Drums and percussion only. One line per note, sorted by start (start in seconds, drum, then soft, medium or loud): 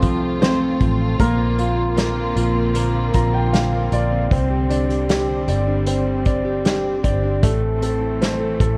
0.02 kick medium
0.02 closed hi-hat medium
0.42 snare medium
0.42 closed hi-hat medium
0.80 kick medium
0.80 closed hi-hat medium
1.19 kick loud
1.19 closed hi-hat medium
1.59 closed hi-hat medium
1.98 snare loud
1.98 closed hi-hat medium
2.37 closed hi-hat medium
2.75 closed hi-hat loud
3.14 kick medium
3.14 closed hi-hat medium
3.54 snare loud
3.54 closed hi-hat medium
3.92 closed hi-hat medium
4.31 kick loud
4.31 closed hi-hat medium
4.71 closed hi-hat medium
4.90 closed hi-hat soft
5.09 snare loud
5.09 closed hi-hat medium
5.48 closed hi-hat medium
5.87 closed hi-hat medium
6.26 kick medium
6.26 closed hi-hat medium
6.65 snare loud
6.65 closed hi-hat medium
7.04 kick medium
7.04 closed hi-hat medium
7.43 kick loud
7.43 closed hi-hat medium
7.82 closed hi-hat medium
8.21 snare loud
8.21 closed hi-hat medium
8.60 kick medium
8.60 closed hi-hat medium